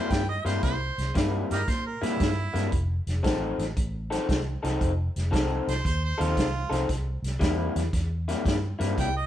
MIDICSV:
0, 0, Header, 1, 5, 480
1, 0, Start_track
1, 0, Tempo, 522193
1, 575, Time_signature, 4, 2, 24, 8
1, 8517, End_track
2, 0, Start_track
2, 0, Title_t, "Harmonica"
2, 0, Program_c, 0, 22
2, 0, Note_on_c, 0, 72, 83
2, 101, Note_on_c, 0, 79, 85
2, 115, Note_off_c, 0, 72, 0
2, 253, Note_off_c, 0, 79, 0
2, 263, Note_on_c, 0, 75, 78
2, 414, Note_off_c, 0, 75, 0
2, 418, Note_on_c, 0, 72, 83
2, 572, Note_off_c, 0, 72, 0
2, 584, Note_on_c, 0, 72, 84
2, 1046, Note_off_c, 0, 72, 0
2, 1399, Note_on_c, 0, 63, 67
2, 1399, Note_on_c, 0, 67, 67
2, 1399, Note_on_c, 0, 70, 95
2, 1478, Note_off_c, 0, 63, 0
2, 1481, Note_off_c, 0, 67, 0
2, 1556, Note_on_c, 0, 72, 85
2, 1570, Note_off_c, 0, 70, 0
2, 1702, Note_off_c, 0, 72, 0
2, 1713, Note_on_c, 0, 70, 80
2, 1877, Note_on_c, 0, 64, 97
2, 1891, Note_off_c, 0, 70, 0
2, 2488, Note_off_c, 0, 64, 0
2, 5233, Note_on_c, 0, 72, 90
2, 5379, Note_off_c, 0, 72, 0
2, 5391, Note_on_c, 0, 72, 95
2, 5538, Note_off_c, 0, 72, 0
2, 5555, Note_on_c, 0, 72, 91
2, 5714, Note_on_c, 0, 65, 100
2, 5728, Note_off_c, 0, 72, 0
2, 6325, Note_off_c, 0, 65, 0
2, 8271, Note_on_c, 0, 79, 95
2, 8416, Note_off_c, 0, 79, 0
2, 8425, Note_on_c, 0, 75, 82
2, 8517, Note_off_c, 0, 75, 0
2, 8517, End_track
3, 0, Start_track
3, 0, Title_t, "Clean electric guitar"
3, 0, Program_c, 1, 27
3, 0, Note_on_c, 1, 48, 82
3, 0, Note_on_c, 1, 55, 70
3, 0, Note_on_c, 1, 58, 93
3, 0, Note_on_c, 1, 64, 96
3, 190, Note_off_c, 1, 64, 0
3, 194, Note_off_c, 1, 58, 0
3, 195, Note_off_c, 1, 55, 0
3, 197, Note_off_c, 1, 48, 0
3, 411, Note_on_c, 1, 58, 84
3, 413, Note_on_c, 1, 64, 91
3, 415, Note_on_c, 1, 55, 81
3, 420, Note_on_c, 1, 48, 68
3, 669, Note_off_c, 1, 58, 0
3, 670, Note_off_c, 1, 64, 0
3, 671, Note_off_c, 1, 55, 0
3, 673, Note_off_c, 1, 48, 0
3, 1052, Note_on_c, 1, 55, 85
3, 1053, Note_on_c, 1, 48, 83
3, 1058, Note_on_c, 1, 58, 96
3, 1061, Note_on_c, 1, 64, 92
3, 1424, Note_off_c, 1, 48, 0
3, 1424, Note_off_c, 1, 55, 0
3, 1427, Note_off_c, 1, 58, 0
3, 1429, Note_off_c, 1, 64, 0
3, 1852, Note_on_c, 1, 64, 96
3, 1853, Note_on_c, 1, 58, 96
3, 1864, Note_on_c, 1, 48, 71
3, 1864, Note_on_c, 1, 55, 83
3, 2110, Note_off_c, 1, 64, 0
3, 2111, Note_off_c, 1, 58, 0
3, 2116, Note_off_c, 1, 48, 0
3, 2116, Note_off_c, 1, 55, 0
3, 2329, Note_on_c, 1, 64, 82
3, 2332, Note_on_c, 1, 58, 85
3, 2338, Note_on_c, 1, 48, 68
3, 2338, Note_on_c, 1, 55, 79
3, 2492, Note_off_c, 1, 64, 0
3, 2493, Note_off_c, 1, 58, 0
3, 2496, Note_off_c, 1, 55, 0
3, 2497, Note_off_c, 1, 48, 0
3, 2968, Note_on_c, 1, 53, 80
3, 2972, Note_on_c, 1, 60, 87
3, 2976, Note_on_c, 1, 63, 90
3, 2976, Note_on_c, 1, 69, 95
3, 3342, Note_off_c, 1, 53, 0
3, 3344, Note_off_c, 1, 60, 0
3, 3346, Note_off_c, 1, 63, 0
3, 3346, Note_off_c, 1, 69, 0
3, 3772, Note_on_c, 1, 63, 89
3, 3774, Note_on_c, 1, 69, 98
3, 3776, Note_on_c, 1, 60, 73
3, 3783, Note_on_c, 1, 53, 82
3, 4030, Note_off_c, 1, 63, 0
3, 4031, Note_off_c, 1, 69, 0
3, 4032, Note_off_c, 1, 60, 0
3, 4035, Note_off_c, 1, 53, 0
3, 4253, Note_on_c, 1, 69, 87
3, 4258, Note_on_c, 1, 63, 88
3, 4263, Note_on_c, 1, 60, 79
3, 4264, Note_on_c, 1, 53, 73
3, 4510, Note_off_c, 1, 69, 0
3, 4512, Note_off_c, 1, 63, 0
3, 4515, Note_off_c, 1, 60, 0
3, 4516, Note_off_c, 1, 53, 0
3, 4881, Note_on_c, 1, 53, 92
3, 4883, Note_on_c, 1, 60, 89
3, 4889, Note_on_c, 1, 63, 94
3, 4890, Note_on_c, 1, 69, 105
3, 5258, Note_off_c, 1, 53, 0
3, 5258, Note_off_c, 1, 60, 0
3, 5262, Note_off_c, 1, 63, 0
3, 5262, Note_off_c, 1, 69, 0
3, 5678, Note_on_c, 1, 69, 96
3, 5683, Note_on_c, 1, 63, 91
3, 5692, Note_on_c, 1, 60, 83
3, 5694, Note_on_c, 1, 53, 82
3, 5942, Note_off_c, 1, 69, 0
3, 5944, Note_off_c, 1, 63, 0
3, 5948, Note_off_c, 1, 60, 0
3, 5950, Note_off_c, 1, 53, 0
3, 6154, Note_on_c, 1, 69, 97
3, 6161, Note_on_c, 1, 63, 88
3, 6166, Note_on_c, 1, 60, 80
3, 6168, Note_on_c, 1, 53, 72
3, 6322, Note_off_c, 1, 69, 0
3, 6326, Note_off_c, 1, 63, 0
3, 6329, Note_off_c, 1, 60, 0
3, 6330, Note_off_c, 1, 53, 0
3, 6796, Note_on_c, 1, 48, 88
3, 6796, Note_on_c, 1, 55, 86
3, 6801, Note_on_c, 1, 58, 81
3, 6805, Note_on_c, 1, 64, 97
3, 7173, Note_off_c, 1, 48, 0
3, 7173, Note_off_c, 1, 55, 0
3, 7176, Note_off_c, 1, 58, 0
3, 7178, Note_off_c, 1, 64, 0
3, 7612, Note_on_c, 1, 64, 97
3, 7614, Note_on_c, 1, 55, 84
3, 7618, Note_on_c, 1, 48, 82
3, 7618, Note_on_c, 1, 58, 89
3, 7867, Note_off_c, 1, 64, 0
3, 7868, Note_off_c, 1, 55, 0
3, 7870, Note_off_c, 1, 48, 0
3, 7870, Note_off_c, 1, 58, 0
3, 8077, Note_on_c, 1, 64, 86
3, 8085, Note_on_c, 1, 58, 91
3, 8087, Note_on_c, 1, 48, 76
3, 8088, Note_on_c, 1, 55, 75
3, 8339, Note_off_c, 1, 64, 0
3, 8343, Note_off_c, 1, 58, 0
3, 8344, Note_off_c, 1, 48, 0
3, 8345, Note_off_c, 1, 55, 0
3, 8517, End_track
4, 0, Start_track
4, 0, Title_t, "Fingered electric bass"
4, 0, Program_c, 2, 33
4, 97, Note_on_c, 2, 43, 86
4, 343, Note_off_c, 2, 43, 0
4, 414, Note_on_c, 2, 43, 89
4, 536, Note_off_c, 2, 43, 0
4, 580, Note_on_c, 2, 36, 83
4, 825, Note_off_c, 2, 36, 0
4, 902, Note_on_c, 2, 36, 88
4, 1021, Note_off_c, 2, 36, 0
4, 1058, Note_on_c, 2, 43, 93
4, 1304, Note_off_c, 2, 43, 0
4, 1388, Note_on_c, 2, 43, 88
4, 1505, Note_off_c, 2, 43, 0
4, 1544, Note_on_c, 2, 46, 91
4, 1788, Note_off_c, 2, 46, 0
4, 1860, Note_on_c, 2, 46, 81
4, 1980, Note_off_c, 2, 46, 0
4, 2020, Note_on_c, 2, 43, 88
4, 2265, Note_off_c, 2, 43, 0
4, 2338, Note_on_c, 2, 43, 81
4, 2459, Note_off_c, 2, 43, 0
4, 2498, Note_on_c, 2, 29, 89
4, 2744, Note_off_c, 2, 29, 0
4, 2821, Note_on_c, 2, 29, 87
4, 2941, Note_off_c, 2, 29, 0
4, 2980, Note_on_c, 2, 33, 95
4, 3225, Note_off_c, 2, 33, 0
4, 3293, Note_on_c, 2, 33, 81
4, 3416, Note_off_c, 2, 33, 0
4, 3461, Note_on_c, 2, 33, 89
4, 3826, Note_off_c, 2, 33, 0
4, 3944, Note_on_c, 2, 36, 82
4, 4187, Note_off_c, 2, 36, 0
4, 4265, Note_on_c, 2, 36, 84
4, 4383, Note_off_c, 2, 36, 0
4, 4422, Note_on_c, 2, 29, 89
4, 4666, Note_off_c, 2, 29, 0
4, 4745, Note_on_c, 2, 29, 91
4, 4863, Note_off_c, 2, 29, 0
4, 4893, Note_on_c, 2, 36, 88
4, 5140, Note_off_c, 2, 36, 0
4, 5216, Note_on_c, 2, 36, 90
4, 5337, Note_off_c, 2, 36, 0
4, 5378, Note_on_c, 2, 39, 93
4, 5623, Note_off_c, 2, 39, 0
4, 5701, Note_on_c, 2, 39, 88
4, 5820, Note_off_c, 2, 39, 0
4, 5854, Note_on_c, 2, 36, 87
4, 6100, Note_off_c, 2, 36, 0
4, 6167, Note_on_c, 2, 36, 85
4, 6291, Note_off_c, 2, 36, 0
4, 6330, Note_on_c, 2, 36, 92
4, 6577, Note_off_c, 2, 36, 0
4, 6641, Note_on_c, 2, 36, 84
4, 6767, Note_off_c, 2, 36, 0
4, 6806, Note_on_c, 2, 40, 98
4, 7055, Note_off_c, 2, 40, 0
4, 7130, Note_on_c, 2, 40, 95
4, 7252, Note_off_c, 2, 40, 0
4, 7290, Note_on_c, 2, 40, 101
4, 7657, Note_off_c, 2, 40, 0
4, 7767, Note_on_c, 2, 43, 90
4, 8015, Note_off_c, 2, 43, 0
4, 8089, Note_on_c, 2, 43, 88
4, 8211, Note_off_c, 2, 43, 0
4, 8249, Note_on_c, 2, 36, 91
4, 8496, Note_off_c, 2, 36, 0
4, 8517, End_track
5, 0, Start_track
5, 0, Title_t, "Drums"
5, 96, Note_on_c, 9, 42, 73
5, 98, Note_on_c, 9, 36, 83
5, 111, Note_on_c, 9, 38, 98
5, 188, Note_off_c, 9, 42, 0
5, 190, Note_off_c, 9, 36, 0
5, 202, Note_off_c, 9, 38, 0
5, 423, Note_on_c, 9, 42, 59
5, 438, Note_on_c, 9, 38, 32
5, 515, Note_off_c, 9, 42, 0
5, 530, Note_off_c, 9, 38, 0
5, 576, Note_on_c, 9, 42, 81
5, 580, Note_on_c, 9, 36, 85
5, 591, Note_on_c, 9, 38, 29
5, 668, Note_off_c, 9, 42, 0
5, 672, Note_off_c, 9, 36, 0
5, 683, Note_off_c, 9, 38, 0
5, 905, Note_on_c, 9, 42, 59
5, 919, Note_on_c, 9, 38, 32
5, 997, Note_off_c, 9, 42, 0
5, 1011, Note_off_c, 9, 38, 0
5, 1058, Note_on_c, 9, 42, 75
5, 1062, Note_on_c, 9, 36, 80
5, 1073, Note_on_c, 9, 38, 114
5, 1150, Note_off_c, 9, 42, 0
5, 1154, Note_off_c, 9, 36, 0
5, 1165, Note_off_c, 9, 38, 0
5, 1387, Note_on_c, 9, 42, 54
5, 1401, Note_on_c, 9, 38, 33
5, 1479, Note_off_c, 9, 42, 0
5, 1493, Note_off_c, 9, 38, 0
5, 1542, Note_on_c, 9, 42, 80
5, 1543, Note_on_c, 9, 36, 84
5, 1557, Note_on_c, 9, 38, 33
5, 1634, Note_off_c, 9, 42, 0
5, 1635, Note_off_c, 9, 36, 0
5, 1649, Note_off_c, 9, 38, 0
5, 1868, Note_on_c, 9, 42, 59
5, 1883, Note_on_c, 9, 38, 32
5, 1960, Note_off_c, 9, 42, 0
5, 1974, Note_off_c, 9, 38, 0
5, 2023, Note_on_c, 9, 42, 82
5, 2024, Note_on_c, 9, 36, 81
5, 2037, Note_on_c, 9, 38, 101
5, 2115, Note_off_c, 9, 42, 0
5, 2116, Note_off_c, 9, 36, 0
5, 2129, Note_off_c, 9, 38, 0
5, 2349, Note_on_c, 9, 42, 65
5, 2363, Note_on_c, 9, 38, 34
5, 2440, Note_off_c, 9, 42, 0
5, 2455, Note_off_c, 9, 38, 0
5, 2501, Note_on_c, 9, 42, 87
5, 2503, Note_on_c, 9, 36, 86
5, 2593, Note_off_c, 9, 42, 0
5, 2595, Note_off_c, 9, 36, 0
5, 2822, Note_on_c, 9, 42, 53
5, 2837, Note_on_c, 9, 38, 29
5, 2914, Note_off_c, 9, 42, 0
5, 2928, Note_off_c, 9, 38, 0
5, 2980, Note_on_c, 9, 42, 82
5, 2982, Note_on_c, 9, 36, 82
5, 2995, Note_on_c, 9, 38, 103
5, 3072, Note_off_c, 9, 42, 0
5, 3074, Note_off_c, 9, 36, 0
5, 3087, Note_off_c, 9, 38, 0
5, 3303, Note_on_c, 9, 42, 61
5, 3317, Note_on_c, 9, 38, 32
5, 3395, Note_off_c, 9, 42, 0
5, 3409, Note_off_c, 9, 38, 0
5, 3463, Note_on_c, 9, 36, 84
5, 3463, Note_on_c, 9, 42, 94
5, 3555, Note_off_c, 9, 36, 0
5, 3555, Note_off_c, 9, 42, 0
5, 3788, Note_on_c, 9, 42, 62
5, 3803, Note_on_c, 9, 38, 33
5, 3880, Note_off_c, 9, 42, 0
5, 3895, Note_off_c, 9, 38, 0
5, 3943, Note_on_c, 9, 36, 81
5, 3946, Note_on_c, 9, 42, 79
5, 3961, Note_on_c, 9, 38, 101
5, 4035, Note_off_c, 9, 36, 0
5, 4038, Note_off_c, 9, 42, 0
5, 4053, Note_off_c, 9, 38, 0
5, 4269, Note_on_c, 9, 42, 57
5, 4284, Note_on_c, 9, 38, 36
5, 4361, Note_off_c, 9, 42, 0
5, 4376, Note_off_c, 9, 38, 0
5, 4422, Note_on_c, 9, 36, 89
5, 4423, Note_on_c, 9, 42, 75
5, 4514, Note_off_c, 9, 36, 0
5, 4515, Note_off_c, 9, 42, 0
5, 4743, Note_on_c, 9, 42, 52
5, 4758, Note_on_c, 9, 38, 31
5, 4835, Note_off_c, 9, 42, 0
5, 4850, Note_off_c, 9, 38, 0
5, 4899, Note_on_c, 9, 36, 91
5, 4903, Note_on_c, 9, 42, 82
5, 4918, Note_on_c, 9, 38, 110
5, 4991, Note_off_c, 9, 36, 0
5, 4995, Note_off_c, 9, 42, 0
5, 5010, Note_off_c, 9, 38, 0
5, 5225, Note_on_c, 9, 42, 60
5, 5240, Note_on_c, 9, 38, 34
5, 5317, Note_off_c, 9, 42, 0
5, 5332, Note_off_c, 9, 38, 0
5, 5378, Note_on_c, 9, 36, 90
5, 5382, Note_on_c, 9, 42, 84
5, 5470, Note_off_c, 9, 36, 0
5, 5474, Note_off_c, 9, 42, 0
5, 5706, Note_on_c, 9, 42, 60
5, 5720, Note_on_c, 9, 38, 33
5, 5798, Note_off_c, 9, 42, 0
5, 5812, Note_off_c, 9, 38, 0
5, 5856, Note_on_c, 9, 36, 82
5, 5856, Note_on_c, 9, 42, 88
5, 5871, Note_on_c, 9, 38, 97
5, 5948, Note_off_c, 9, 36, 0
5, 5948, Note_off_c, 9, 42, 0
5, 5963, Note_off_c, 9, 38, 0
5, 6180, Note_on_c, 9, 42, 64
5, 6195, Note_on_c, 9, 38, 34
5, 6272, Note_off_c, 9, 42, 0
5, 6287, Note_off_c, 9, 38, 0
5, 6334, Note_on_c, 9, 36, 83
5, 6334, Note_on_c, 9, 42, 91
5, 6349, Note_on_c, 9, 38, 30
5, 6426, Note_off_c, 9, 36, 0
5, 6426, Note_off_c, 9, 42, 0
5, 6441, Note_off_c, 9, 38, 0
5, 6657, Note_on_c, 9, 42, 62
5, 6672, Note_on_c, 9, 38, 33
5, 6749, Note_off_c, 9, 42, 0
5, 6764, Note_off_c, 9, 38, 0
5, 6811, Note_on_c, 9, 42, 92
5, 6812, Note_on_c, 9, 36, 86
5, 6825, Note_on_c, 9, 38, 116
5, 6903, Note_off_c, 9, 42, 0
5, 6904, Note_off_c, 9, 36, 0
5, 6917, Note_off_c, 9, 38, 0
5, 7132, Note_on_c, 9, 42, 69
5, 7147, Note_on_c, 9, 38, 33
5, 7224, Note_off_c, 9, 42, 0
5, 7239, Note_off_c, 9, 38, 0
5, 7291, Note_on_c, 9, 36, 82
5, 7292, Note_on_c, 9, 42, 88
5, 7306, Note_on_c, 9, 38, 32
5, 7383, Note_off_c, 9, 36, 0
5, 7384, Note_off_c, 9, 42, 0
5, 7398, Note_off_c, 9, 38, 0
5, 7616, Note_on_c, 9, 42, 65
5, 7631, Note_on_c, 9, 38, 34
5, 7708, Note_off_c, 9, 42, 0
5, 7723, Note_off_c, 9, 38, 0
5, 7772, Note_on_c, 9, 36, 85
5, 7776, Note_on_c, 9, 42, 83
5, 7790, Note_on_c, 9, 38, 116
5, 7864, Note_off_c, 9, 36, 0
5, 7868, Note_off_c, 9, 42, 0
5, 7882, Note_off_c, 9, 38, 0
5, 8094, Note_on_c, 9, 42, 65
5, 8109, Note_on_c, 9, 38, 33
5, 8186, Note_off_c, 9, 42, 0
5, 8201, Note_off_c, 9, 38, 0
5, 8251, Note_on_c, 9, 36, 80
5, 8252, Note_on_c, 9, 42, 84
5, 8267, Note_on_c, 9, 38, 33
5, 8343, Note_off_c, 9, 36, 0
5, 8344, Note_off_c, 9, 42, 0
5, 8359, Note_off_c, 9, 38, 0
5, 8517, End_track
0, 0, End_of_file